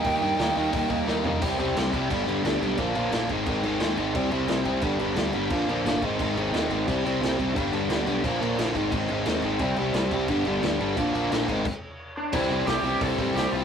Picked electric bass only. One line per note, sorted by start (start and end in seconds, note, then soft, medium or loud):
0.05 0.16 D#2 medium
0.22 0.33 G2 medium
0.40 0.50 D#2 loud
0.57 0.68 D#2 loud
0.73 0.84 D#2 loud
0.90 1.01 D#2 medium
1.08 1.19 D#2 loud
1.25 1.36 D#2 loud
1.42 1.56 C2 medium
1.59 1.73 C2 medium
1.75 1.90 C2 medium
1.93 2.07 C2 medium
2.11 2.25 G1 loud
2.28 2.42 G1 medium
2.44 2.58 D2 medium
2.61 2.78 B1 medium
2.78 2.93 A#1 medium
2.96 3.10 A#1 medium
3.13 3.27 A#1 loud
3.30 3.44 G#1 medium
3.47 3.61 G#1 loud
3.64 3.78 G#1 medium
3.81 3.95 D#2 loud
3.98 4.12 G#1 medium
4.15 4.29 C2 medium
4.32 4.46 C2 medium
4.49 4.63 C2 loud
4.66 4.80 C2 medium
4.83 4.97 G1 loud
4.99 5.13 G1 medium
5.16 5.31 D2 loud
5.34 5.48 G1 medium
5.51 5.65 A#1 medium
5.67 5.82 A#1 medium
5.85 5.99 G1 medium
6.03 6.17 G#1 medium
6.19 6.34 G#1 loud
6.35 6.50 G#1 medium
6.51 6.66 D#2 medium
6.69 6.84 G#1 medium
6.88 7.02 C2 medium
7.05 7.19 C2 medium
7.22 7.36 C2 medium
7.40 7.54 C2 medium
7.56 7.70 G1 loud
7.73 7.87 G1 medium
7.89 8.04 D2 loud
8.06 8.21 B1 medium
8.24 8.38 A#1 medium
8.42 8.56 A#1 medium
8.58 8.72 A#1 medium
8.75 8.89 G#1 medium
8.92 9.07 G#1 loud
9.10 9.24 G#1 medium
9.26 9.41 D#2 loud
9.42 9.57 G#1 loud
9.60 9.74 C2 medium
9.76 9.91 C2 medium
9.93 10.08 C2 loud
10.12 10.26 C2 medium
10.29 10.43 G1 medium
10.45 10.60 G1 medium
10.64 10.78 D2 loud
10.80 10.94 G1 medium
10.97 11.12 A#1 medium
11.14 11.28 A#1 medium
11.32 11.46 A#1 loud
11.49 11.63 G#1 medium
12.33 12.44 C2 medium
12.49 12.61 C2 medium
12.66 12.77 C2 loud
12.83 12.94 C2 medium
13.01 13.12 C2 loud
13.18 13.29 A1 medium
13.34 13.46 C2 loud
13.52 13.63 C2 loud